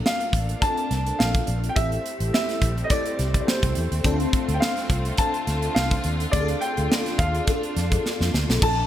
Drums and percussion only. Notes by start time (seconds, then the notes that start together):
0.06 snare
0.20 closed hi-hat
0.33 kick, closed hi-hat
0.49 closed hi-hat
0.62 kick, closed hi-hat
0.77 closed hi-hat
0.91 snare, closed hi-hat
1.06 closed hi-hat
1.20 snare
1.34 kick, closed hi-hat
1.47 closed hi-hat
1.64 closed hi-hat
1.76 kick, closed hi-hat
1.92 closed hi-hat
2.06 closed hi-hat
2.20 closed hi-hat
2.34 snare
2.49 snare, closed hi-hat
2.62 kick, closed hi-hat
2.78 closed hi-hat
2.90 kick, closed hi-hat
3.06 closed hi-hat
3.19 snare, closed hi-hat
3.34 kick, closed hi-hat
3.48 snare
3.63 kick, closed hi-hat
3.75 closed hi-hat
3.92 closed hi-hat
4.04 kick, closed hi-hat
4.20 closed hi-hat
4.33 kick, closed hi-hat
4.49 closed hi-hat
4.62 snare
4.77 snare, closed hi-hat
4.90 kick, closed hi-hat
5.05 closed hi-hat
5.17 kick, closed hi-hat
5.34 closed hi-hat
5.47 snare, closed hi-hat
5.62 closed hi-hat
5.76 snare
5.91 kick, closed hi-hat
6.04 closed hi-hat
6.20 closed hi-hat
6.33 kick, closed hi-hat
6.48 closed hi-hat
6.62 closed hi-hat
6.77 closed hi-hat
6.92 snare
7.06 snare, closed hi-hat
7.19 kick, closed hi-hat
7.35 closed hi-hat
7.47 kick, closed hi-hat
7.63 closed hi-hat
7.77 snare, closed hi-hat
7.92 kick, closed hi-hat
8.06 snare
8.21 snare
8.34 snare
8.50 snare
8.62 kick, crash